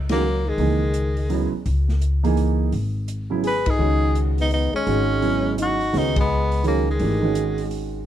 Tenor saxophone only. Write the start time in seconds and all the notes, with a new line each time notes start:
0.12 A#3
0.48 G#3
3.47 B4
3.70 G#4
4.41 D#4
4.54 D#4
4.76 C#4
5.62 F#4
5.98 D#4
6.20 B3
6.68 A#3
6.90 G#3